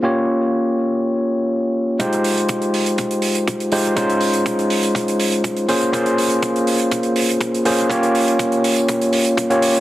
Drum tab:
HH |----------------|xxoxxxoxxxoxxxox|xxoxxxoxxxoxxxox|xxoxxxoxxxoxxxox|
T2 |----------------|o---o---o---o---|o---o---o---o---|o---o---o---o---|
BD |----------------|o---o---o---o---|o---o---o---o---|o---o---o---o---|

HH |xxoxxxoxxxoxxxox|
T2 |o---o---o---o---|
BD |o---o---o---o---|